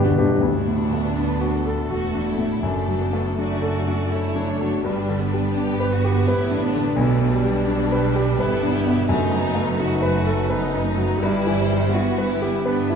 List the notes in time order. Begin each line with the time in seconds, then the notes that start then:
Already playing: G1 B3 D4 G4
0.03 G2 B3 D4 F#4
0.12 G2
0.18 G2 B3 D4 G4
0.27 G2
0.35 G2
0.41 D2 B3 D4 F#4
0.68 A2
0.93 A3
1.16 D4 B4
1.41 F#4
1.53 A4
1.66 A4
1.90 E1 E2 A3 F#4
2.14 D4
2.28 E4
2.38 A2
2.63 F#1 F#2 A3 D4 A4
2.89 F#3
3.01 B3
3.13 A3
3.38 A3 D4 F#4 D5
3.62 A4
3.75 A3
3.87 D4
4.11 E4 A4 C#5
4.36 D4
4.48 D4
4.61 F#3
4.85 G1 G2 G3 D4 B4
5.09 D3
5.22 B3
5.34 G3
5.56 B3 D4 G4
5.80 B4
5.92 F#4
6.05 G4
6.28 A1 A2 E4 B4
6.51 D4
6.62 D4
6.74 D3
6.96 B1 B2 A3 D4 B4
7.20 B2
7.34 G3
7.45 G3
7.68 D4 B4
7.92 B4
8.16 G4
8.38 G1 G2 B3 E4 A4 B4
8.63 D4
8.75 G4
8.87 B2
9.09 F#1 F#2 A3 D#4 B4
9.31 F#3
9.45 B3
9.55 A3
9.79 A3 D#4 F#4
10.02 B4
10.14 A3
10.26 A4
10.50 B3 D#4 B4
10.74 D#4
10.85 A3
10.97 F#3
11.21 G1 G2 G3 E4 B4
11.47 E3
11.56 C5
11.72 G3
11.92 B3 E4 F#4 B4
12.18 B4
12.28 E4
12.42 G4
12.64 B3 D4 B4
12.90 E4